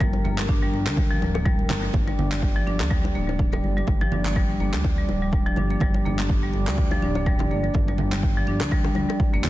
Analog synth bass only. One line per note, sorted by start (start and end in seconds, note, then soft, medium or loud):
0.00 0.19 G1 loud
0.25 0.69 G1 medium
0.73 0.88 G1 medium
0.87 1.17 D2 medium
1.22 1.66 D1 medium
1.70 1.89 G1 medium
1.94 2.13 G1 loud
2.18 2.62 G1 medium
2.67 2.82 G1 medium
2.80 3.11 D2 medium
3.15 3.59 D1 medium
3.64 3.82 G1 medium
3.88 4.06 G1 loud
4.12 4.56 G1 medium
4.60 4.75 G1 medium
4.74 5.04 D2 medium
5.09 5.53 D1 medium
5.57 5.76 G1 medium
5.81 6.00 G1 loud
6.05 6.49 G1 medium
6.54 6.69 G1 medium
6.67 6.98 D2 medium
7.02 7.46 D1 medium
7.51 7.69 G1 medium
7.75 7.93 G1 loud
7.99 8.43 G1 medium
8.47 8.62 G1 medium
8.61 8.91 D2 medium
8.96 9.06 D2 medium
9.34 9.41 F1 medium
9.44 9.50 G2 medium